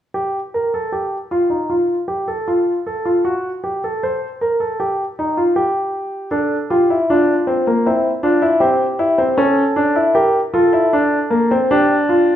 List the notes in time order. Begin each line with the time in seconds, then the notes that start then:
0.14 G4
0.54 A#4
0.74 A4
0.92 G4
1.31 F4
1.50 D#4
1.70 F4
2.08 G4
2.28 A4
2.48 F4
2.86 A4
3.05 F4
3.25 F#4
3.64 G4
3.84 A4
4.03 C5
4.41 A#4
4.60 A4
4.80 G4
5.19 D#4
5.37 F4
5.56 G4
6.31 D4 A4
6.70 F4 G4
6.90 E4
7.10 D4 F4
7.47 C4
7.67 A#3
7.86 C4 E4
8.23 D4 F4
8.42 E4
8.60 C4 G4
8.99 E4
9.18 C4
9.38 C#4 A4
9.76 D4
9.96 E4
10.15 G4 A#4
10.54 F4 A4
10.73 E4
10.93 D4
11.30 A#3
11.51 C4
11.71 D4 G4
12.09 F4